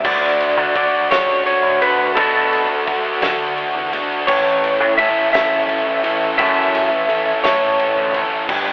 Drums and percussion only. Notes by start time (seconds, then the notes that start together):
0.05 kick, crash
0.40 ride
0.76 kick, ride
1.11 snare, ride
1.47 ride
1.82 ride
2.17 kick, ride
2.53 ride
2.87 kick, ride
3.22 snare, ride
3.58 ride
3.93 ride
4.28 kick, crash
4.64 ride
4.99 kick, ride
5.34 snare, ride
5.69 ride
6.04 ride
6.39 kick, ride
6.75 ride
7.10 ride
7.44 snare, ride
7.79 ride
8.14 ride
8.49 kick, crash